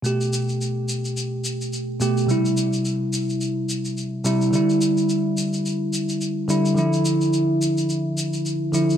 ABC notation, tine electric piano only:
X:1
M:4/4
L:1/8
Q:"Swing 16ths" 1/4=107
K:Gmix
V:1 name="Tine electric piano" clef=bass
[B,,A,G]6- [B,,A,G] [B,,A,G] | [C,G,E]6- [C,G,E] [C,G,E] | [D,G,E]6- [D,G,E] [D,G,E] | [D,F,E]6- [D,F,E] [D,F,E] |]